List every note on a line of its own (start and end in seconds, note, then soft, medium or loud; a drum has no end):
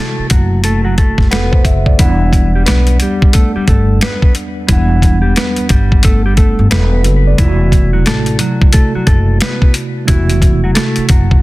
0.00 1.95 C3 medium
0.00 0.27 A3 medium
0.00 1.94 A3 medium
0.00 1.95 E4 medium
0.00 1.96 F#4 medium
0.00 0.27 A4 medium
0.19 muted upright bass stroke soft
0.30 1.16 F#1 medium
0.30 0.61 F#3 medium
0.30 0.61 F#4 medium
0.30 kick medium
0.30 closed hi-hat medium
0.64 0.84 A3 medium
0.64 0.84 A4 medium
0.64 closed hi-hat loud
0.85 0.97 F#3 medium
0.85 0.96 F#4 medium
0.98 1.29 A3 medium
0.98 1.29 A4 medium
0.98 kick medium
0.98 closed hi-hat medium
1.18 1.30 F#1 medium
1.18 kick medium
1.18 snare soft
1.31 1.65 E1 medium
1.31 1.62 B3 medium
1.31 1.52 A4 medium
1.31 1.62 B4 medium
1.31 1.63 F#5 medium
1.31 cross-stick medium
1.31 snare loud
1.31 closed hi-hat medium
1.52 1.84 C5 medium
1.52 kick medium
1.65 1.96 F#1 medium
1.65 1.97 E5 medium
1.65 kick loud
1.65 closed hi-hat medium
1.86 2.19 D5 medium
1.86 kick medium
1.97 2.63 E1 loud
1.97 4.64 E2 medium
1.97 2.52 E3 medium
1.97 4.64 G3 medium
1.97 4.65 B3 medium
1.97 4.65 D4 medium
1.97 2.51 E4 loud
1.97 kick loud
1.97 closed hi-hat loud
2.01 4.66 F#5 medium
2.33 kick medium
2.33 closed hi-hat medium
2.55 2.67 G3 medium
2.55 2.66 G4 medium
2.66 2.97 B1 loud
2.66 2.97 B3 medium
2.66 2.97 B4 medium
2.66 cross-stick loud
2.66 snare loud
2.66 closed hi-hat medium
2.87 closed hi-hat medium
3.00 3.32 G3 medium
3.00 3.32 G4 medium
3.00 closed hi-hat medium
3.22 kick loud
3.33 3.54 A3 medium
3.33 3.53 A4 medium
3.33 kick loud
3.33 closed hi-hat loud
3.55 3.67 G3 medium
3.55 3.67 G4 medium
3.55 muted upright bass stroke soft
3.68 3.98 G1 loud
3.68 3.99 A3 medium
3.68 3.99 A4 medium
3.68 kick medium
3.68 closed hi-hat medium
4.01 4.33 B3 medium
4.01 4.33 B4 medium
4.01 cross-stick medium
4.01 snare loud
4.01 closed hi-hat medium
4.22 kick loud
4.35 closed hi-hat medium
4.68 5.32 E1 loud
4.68 7.00 E2 medium
4.68 5.21 E3 medium
4.68 7.01 G3 medium
4.68 7.02 B3 medium
4.68 7.02 D4 medium
4.68 5.20 E4 loud
4.68 kick loud
4.68 closed hi-hat loud
4.72 7.03 F#5 medium
5.02 kick medium
5.02 closed hi-hat medium
5.22 5.34 G3 medium
5.22 5.34 G4 medium
5.36 5.67 B3 medium
5.36 5.67 B4 medium
5.36 cross-stick loud
5.36 snare loud
5.36 closed hi-hat loud
5.56 muted upright bass stroke medium
5.56 closed hi-hat medium
5.69 6.55 G1 medium
5.69 6.01 G3 medium
5.69 6.01 G4 medium
5.69 kick loud
5.69 closed hi-hat medium
5.92 kick loud
6.03 6.24 A3 medium
6.03 6.23 A4 loud
6.03 kick loud
6.03 closed hi-hat loud
6.26 6.37 G3 medium
6.26 6.37 G4 medium
6.37 6.68 A3 medium
6.37 6.68 A4 medium
6.37 kick loud
6.37 closed hi-hat medium
6.59 6.70 G1 medium
6.71 7.05 E1 loud
6.71 7.02 B3 medium
6.71 6.91 A4 medium
6.71 7.01 B4 medium
6.71 cross-stick medium
6.71 snare loud
6.71 closed hi-hat medium
6.93 7.25 B4 medium
7.04 7.36 F#1 medium
7.04 closed hi-hat medium
7.27 7.59 D5 medium
7.38 8.02 E1 loud
7.38 10.05 C3 medium
7.38 7.90 E3 medium
7.38 10.04 A3 medium
7.38 7.90 E4 loud
7.38 10.05 E4 medium
7.38 kick loud
7.38 closed hi-hat loud
7.42 7.49 F4 medium
7.49 10.09 F#4 medium
7.72 kick medium
7.72 closed hi-hat medium
7.93 8.05 F#3 medium
7.93 8.05 F#4 medium
8.06 8.37 A1 loud
8.06 8.37 A3 medium
8.06 8.37 A4 medium
8.06 cross-stick loud
8.06 snare loud
8.06 closed hi-hat loud
8.26 closed hi-hat medium
8.39 8.70 F#3 medium
8.39 8.70 F#4 medium
8.39 closed hi-hat medium
8.62 kick loud
8.73 8.93 A3 medium
8.73 8.93 A4 medium
8.73 kick loud
8.73 closed hi-hat loud
8.95 9.07 F#3 medium
8.95 9.06 F#4 medium
8.95 muted upright bass stroke medium
9.07 9.38 F#1 loud
9.07 9.38 A3 medium
9.07 9.37 A4 medium
9.07 kick loud
9.07 closed hi-hat medium
9.41 9.73 B3 medium
9.41 9.72 B4 medium
9.41 cross-stick medium
9.41 snare loud
9.41 closed hi-hat medium
9.62 kick loud
9.74 closed hi-hat medium
10.05 10.72 E1 loud
10.05 11.42 C3 medium
10.05 10.60 E3 medium
10.05 11.42 A3 medium
10.05 10.60 E4 loud
10.05 11.42 E4 medium
10.05 kick loud
10.05 closed hi-hat loud
10.10 11.42 F#4 medium
10.30 closed hi-hat medium
10.42 kick medium
10.42 closed hi-hat medium
10.64 10.75 F#3 medium
10.64 10.74 F#4 medium
10.75 11.06 A3 medium
10.75 11.06 A4 medium
10.75 cross-stick medium
10.75 snare loud
10.75 closed hi-hat medium
10.96 muted upright bass stroke soft
10.96 closed hi-hat medium
11.09 11.42 F#1 medium
11.09 11.40 F#3 medium
11.09 11.40 F#4 medium
11.09 kick loud
11.09 closed hi-hat medium
11.31 kick medium